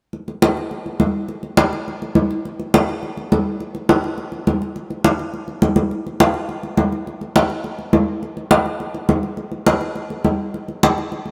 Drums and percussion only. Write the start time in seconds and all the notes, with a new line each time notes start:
0.13 high conga
0.28 high conga
0.42 high conga
0.57 high conga
0.71 high conga
0.86 high conga
1.00 high conga
1.28 high conga
1.43 high conga
1.57 high conga
1.73 high conga
1.88 high conga
2.02 high conga
2.15 high conga
2.31 high conga
2.45 high conga
2.60 high conga
2.74 high conga
2.89 high conga
3.03 high conga
3.17 high conga
3.32 high conga
3.60 high conga
3.75 high conga
3.89 high conga
4.04 high conga
4.18 high conga
4.32 high conga
4.47 high conga
4.62 high conga
4.76 high conga
4.90 high conga
5.04 high conga
5.19 high conga
5.34 high conga
5.48 high conga
5.62 high conga
5.76 high conga
5.91 high conga
6.07 high conga
6.20 high conga
6.34 high conga
6.49 high conga
6.63 high conga
6.77 high conga
6.92 high conga
7.07 high conga
7.21 high conga
7.36 high conga
7.50 high conga
7.64 high conga
7.79 high conga
7.93 high conga
8.23 high conga
8.37 high conga
8.51 high conga
8.66 high conga
8.80 high conga
8.94 high conga
9.09 high conga
9.23 high conga
9.37 high conga
9.52 high conga
9.66 high conga
9.81 high conga
9.95 high conga
10.10 high conga
10.25 high conga
10.54 high conga
10.68 high conga
10.83 high conga
10.98 high conga
11.12 high conga
11.26 high conga